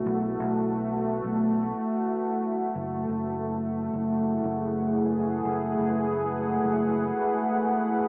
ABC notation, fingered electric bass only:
X:1
M:4/4
L:1/16
Q:1/4=89
K:F#m
V:1 name="Fingered electric bass" clef=bass
B,,,2 B,,,4- B,,, B,,,3 z6 | F,,,2 F,,,4- F,,, F,,,3 F,,,6 | F,,,2 F,,,4- F,,, F,,,3 z6 |]